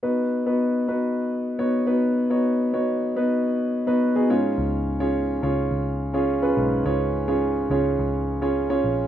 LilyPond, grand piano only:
<<
  \new Staff \with { instrumentName = "Grand piano" } { \time 4/4 \key b \lydian \tempo 4 = 106 <b dis' fis' b'>8 r16 <b dis' fis' b'>8 r16 <b dis' fis' b'>4 r16 <b dis' fis' cis''>16 r16 <b dis' fis' b'>8 r16 | <b dis' fis' cis''>8 r16 <b dis' fis' cis''>8 r16 <b dis' fis' b'>4 r16 <b dis' fis' b'>16 r16 <b dis' fis' gis'>16 <cis' eis' gis' cis''>8~ | <cis' eis' gis' cis''>8 r16 <cis' eis' gis' cis''>8 r16 <cis' eis' gis' cis''>4 r16 <cis' eis' gis' cis''>16 r16 <cis' eis' gis' b'>8 r16 | <cis' eis' gis' cis''>8 r16 <cis' eis' gis' cis''>8 r16 <cis' eis' gis' cis''>4 r16 <cis' eis' gis' cis''>16 r16 <cis' eis' gis' cis''>8 r16 | }
  \new Staff \with { instrumentName = "Grand piano" } { \clef bass \time 4/4 \key b \lydian r1 | r2. r8 gis,8~ | gis,4 r2 r8 gis,8~ | gis,4 r2. | }
>>